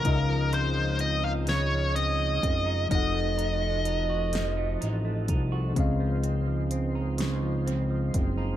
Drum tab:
HH |xxxxxx|xxxxxx|xxxxxx|
SD |---o--|---o--|---o--|
BD |o----o|o----o|o----o|